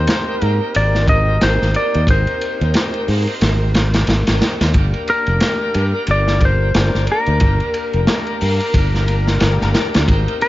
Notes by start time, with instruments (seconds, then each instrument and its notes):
Already playing: tonewheel organ C4 D#4 G4 A#4, ambient pad A#4, electric slide guitar C5
0.07 snare, ride
0.41 fingered electric bass G#2, electric slide guitar A#4, ride
0.75 fingered electric bass G#1, electric slide guitar D5, ride
0.95 snare
1.08 electric slide guitar D#5, kick, ride
1.41 fingered electric bass G#1, tonewheel organ C4 D#4 G4 D#5, electric slide guitar C5, snare, ride
1.62 fingered electric bass G#1, snare
1.74 electric slide guitar D5, ride
1.94 fingered electric bass D#2, ride
2.07 fingered electric bass G#1, tonewheel organ C4 D#4 G4, electric slide guitar C5, kick, ride
2.12 tonewheel organ A#4
2.27 ride
2.41 ride
2.61 fingered electric bass D#2, ride
2.74 snare, ride
2.94 ride
3.08 fingered electric bass G#2, open hi-hat
3.27 ride
3.41 fingered electric bass G#1, snare, ride
3.74 snare, ride
3.94 snare, ride
4.07 fingered electric bass G#1, snare, ride
4.27 fingered electric bass G#1, tonewheel organ C4 D#4 G4 A#4, snare, ride
4.42 snare, ride
4.61 fingered electric bass D#2, snare, ride
4.72 fingered electric bass G1, tonewheel organ A#3 D4, ambient pad A#4, kick, ride
4.76 tonewheel organ G4 A#4
4.94 ride
5.08 electric slide guitar A#4, ride
5.26 fingered electric bass F1, ride
5.40 snare, ride
5.74 fingered electric bass G2, ride
6.07 fingered electric bass G1, ride
6.11 electric slide guitar D5
6.28 snare
6.41 kick, ride
6.45 electric slide guitar C5
6.74 fingered electric bass G1, tonewheel organ A#3 D4 G4 D5, snare, ride
6.95 fingered electric bass G1, snare
7.07 ride
7.12 electric slide guitar A#4
7.26 fingered electric bass D2, ride
7.40 fingered electric bass G1, tonewheel organ A#3 D4, kick, ride
7.44 tonewheel organ G4 A#4
7.60 ride
7.74 ride
7.93 fingered electric bass F1, ride
8.07 snare, ride
8.27 ride
8.41 fingered electric bass G2, open hi-hat
8.60 ride
8.74 fingered electric bass G1, kick, ride
8.95 snare
9.06 tonewheel organ A#3 D4 G4, ride
9.11 tonewheel organ A#4
9.27 snare
9.40 fingered electric bass G1, snare, ride
9.61 fingered electric bass G1, snare
9.74 snare, ride
9.94 fingered electric bass D2, snare, ride
10.06 fingered electric bass G#1, tonewheel organ C4 D#4, kick, ride
10.10 tonewheel organ G4 A#4
10.28 ride
10.41 electric slide guitar C5, ride